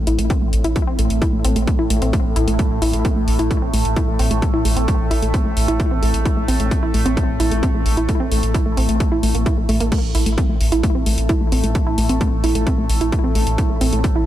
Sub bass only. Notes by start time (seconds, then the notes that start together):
0.07 A1
0.19 A1
0.42 A1
0.53 A1
0.64 A1
0.87 A1
0.99 A1
1.10 A1
1.33 A1
1.44 A1
1.56 A1
1.79 A1
1.90 A1
2.02 A1
2.25 A1
2.36 A1
2.48 A1
2.71 A1
2.82 A1
2.93 A1
3.16 A1
3.28 A1
3.39 A1
3.62 A1
3.74 A1
3.85 A1
4.08 A1
4.19 A1
4.31 A1
4.54 A1
4.65 A1
4.77 A1
5.00 A1
5.11 A1
5.22 A1
5.45 A1
5.57 A1
5.68 A1
5.91 A1
6.03 A1
6.14 A1
6.37 A1
6.48 A1
6.60 A1
6.83 A1
6.94 A1
7.06 A1
7.29 A1
7.40 A1
7.51 A1
7.74 A1
7.86 A1
7.97 A1
8.20 A1
8.31 A1
8.43 A1
8.66 A1
8.77 A1
8.89 A1
9.12 A1
9.23 A1
9.35 A1
9.57 A1
9.69 A1
9.80 A1
10.03 A1
10.15 A1
10.26 A1
10.49 A1
10.61 A1
10.72 A1
10.95 A1
11.06 A1
11.18 A1
11.41 A1
11.52 A1
11.64 A1
11.87 A1
11.98 A1
12.09 A1
12.32 A1
12.44 A1
12.55 A1
12.78 A1
12.89 A1
13.01 A1
13.24 A1
13.35 A1
13.47 A1
13.70 A1
13.81 A1
13.93 A1
14.16 A1